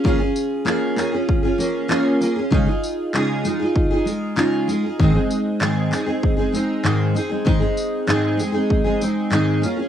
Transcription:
<<
  \new Staff \with { instrumentName = "Steel-string acoustic guitar" } { \time 4/4 \key aes \major \tempo 4 = 97 <bes des' f' aes'>16 <des' f' aes'>8. <bes des' f' aes'>8 <bes des' f' aes'>16 <des' f' aes'>8 <des' f' aes'>16 <bes des' f' aes'>8 <bes des' f' aes'>8 <bes des' f' aes'>16 <des' f' aes'>16 | <des aes ees' f' aes'>16 <ees' f' aes'>8. <des aes ees' f' aes'>8 <aes ees' f' aes'>16 <ees' f' aes'>8 <ees' f' aes'>16 <aes ees' f' aes'>8 <des aes ees' f' aes'>8 <aes ees' f' aes'>16 <ees' f' aes'>16 | <aes, ees aes c' ees' aes'>16 <aes c' ees' aes'>8. <aes, ees aes c' ees' aes'>8 <aes c' ees' aes'>16 <aes c' ees' aes'>8 <aes c' ees' aes'>16 <aes c' ees' aes'>8 <aes, ees aes c' ees' aes'>8 <aes c' ees' aes'>16 <aes c' ees' aes'>16 | <aes, ees aes c' ees' aes'>16 <aes c' ees' aes'>8. <aes, ees aes c' ees' aes'>8 <aes c' ees' aes'>16 <aes c' ees' aes'>8 <aes c' ees' aes'>16 <aes c' ees' aes'>8 <aes, ees aes c' ees' aes'>8 <bes des' f' aes'>16 <des' f' aes'>16 | }
  \new DrumStaff \with { instrumentName = "Drums" } \drummode { \time 4/4 bd8 tamb8 hc8 <hc tamb>8 bd8 tamb8 hc8 tamb8 | bd8 tamb8 hc8 tamb8 bd8 tamb8 hc8 tamb8 | bd8 tamb8 hc8 <hc tamb>8 bd8 tamb8 hc8 tamb8 | bd8 tamb8 hc8 tamb8 bd8 tamb8 hc8 tamb8 | }
>>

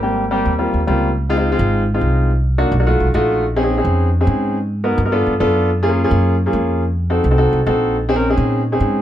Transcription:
<<
  \new Staff \with { instrumentName = "Grand piano" } { \time 4/4 \key aes \major \tempo 4 = 212 <g bes c' g'>8. r16 <g bes c' g'>8. r16 <g bes c' f'>8. r16 <g bes c' f'>8. r16 | \key des \major r8 <aes c' ees' f'>16 <aes c' ees' f'>16 r16 <aes c' ees' f'>4 r8 <aes c' ees' f'>4~ <aes c' ees' f'>16 | r4 <bes d' ees' ges'>8 r16 <bes d' ees' ges'>16 <a ees' f' ges'>8. r16 <a ees' f' ges'>4 | r8 <c' des' ees' aes'>16 <c' des' ees' aes'>16 r16 <c' des' ees' aes'>4 r8 <c' des' ees' aes'>4~ <c' des' ees' aes'>16 |
r4 <ces' ees' ges' bes'>8 r16 <ces' ees' ges' bes'>16 <b d' f' a'>8. r16 <b d' f' a'>4 | r8 <bes des' f' aes'>16 <bes des' f' aes'>16 r16 <bes des' f' aes'>4 r8 <bes des' f' aes'>4~ <bes des' f' aes'>16 | r4 <c' ees' ges' a'>8 r16 <c' ees' ges' a'>16 <c' ees' ges' a'>8. r16 <c' ees' ges' a'>4 | r8 <c' des' ees' aes'>16 <c' des' ees' bes'>16 r16 <c' des' ees' aes'>4 r8 <c' des' ees' aes'>4~ <c' des' ees' aes'>16 | }
  \new Staff \with { instrumentName = "Upright bass" } { \clef bass \time 4/4 \key aes \major aes,,4. ees,4 ees,8 des,4~ | \key des \major des,4. aes,,4. c,4~ | c,4. ces,4 ces,8 bes,,4~ | bes,,4. f,4. aes,4~ |
aes,4. g,4 g,8 ges,4~ | ges,4. ges,4. f,4~ | f,4. c,4 c,8 bes,,4~ | bes,,4. bes,4. aes,4 | }
>>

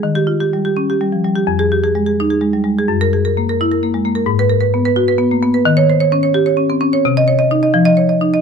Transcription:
\new Staff \with { instrumentName = "Marimba" } { \time 6/8 \key ees \mixolydian \tempo 4. = 86 << { r16 g'8 r2 r16 | r16 aes'8 r2 r16 | r16 bes'8 r2 r16 | r16 ces''8 r2 r16 |
r16 des''8 r2 r16 | r16 ees''8 r4 ees''8 r8. | } \\ { ees8 f'16 g'16 g16 g'16 des'16 g'16 g16 f16 g16 g'16 | f,8 g'16 aes'16 aes16 aes'16 ees'16 aes'16 aes16 g16 aes16 aes'16 | ges,8 aes'16 bes'16 bes16 bes'16 fes'16 bes'16 bes16 aes16 bes16 bes'16 | aes,8 bes'16 ces''16 ces'16 ces''16 ges'16 ces''16 ces'16 bes16 ces'16 ces''16 |
ees8 c''16 des''16 des'16 des''16 g'16 des''16 des'16 c'16 des'16 des''16 | c8 des''16 ees''16 ees'16 ees''16 f8 des''16 ees''16 ees'16 ees''16 | } >> }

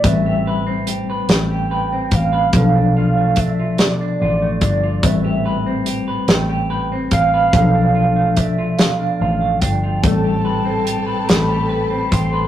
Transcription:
<<
  \new Staff \with { instrumentName = "Soft synth lead" } { \time 6/8 \key a \minor \tempo 4. = 48 e''4 r8 g''4 f''8~ | f''8 f''8 e''8 d''8 d''8 d''8 | e''4 r8 g''8 g''8 f''8~ | f''4 e''8 f''8 f''8 g''8 |
a''4. b''4 c'''8 | }
  \new Staff \with { instrumentName = "String section" } { \time 6/8 \key a \minor r2. | r2. | r2. | r2. |
<c' a' g'' a''>2. | }
  \new Staff \with { instrumentName = "Clean electric guitar" } { \time 6/8 \key a \minor a16 g'16 b'16 c'16 g'16 b'16 a16 g'16 b'16 c'16 g'16 b'16 | b,16 d'16 f'16 a16 d'16 f'16 b,16 d'16 f'16 a16 d'16 f'16 | a16 g'16 b'16 c'16 g'16 b'16 a16 g'16 b'16 c'16 g'16 b'16 | b,16 d'16 f'16 a16 d'16 f'16 b,16 d'16 f'16 a16 d'16 f'16 |
a16 g'16 b'16 c'16 g'16 b'16 a16 g'16 b'16 c'16 g'16 b'16 | }
  \new Staff \with { instrumentName = "Tine electric piano" } { \time 6/8 \key a \minor <a, g c' b'>2. | <b, f d' a'>2. | <a, g c' b'>2. | <b, f d' a'>2. |
<a, g b c' a'>2. | }
  \new Staff \with { instrumentName = "Fingered electric bass" } { \clef bass \time 6/8 \key a \minor a,,4. a,,4 a,,8 | b,,2 a,,8 g,,8 | a,,4. a,,4 a,,8 | b,,2 a,,8 g,,8 |
a,,4. a,,4 a,,8 | }
  \new DrumStaff \with { instrumentName = "Drums" } \drummode { \time 6/8 <hh bd>4 hh8 <hh sn>4 <hh bd>8 | <hh bd>4 <hh bd>8 <hh sn>4 <hh bd>8 | <hh bd>4 hh8 <hh sn>4 <hh bd>8 | <hh bd>4 <hh bd>8 <hh sn>4 <hh bd>8 |
<hh bd>4 hh8 <hh sn>4 <hh bd>8 | }
>>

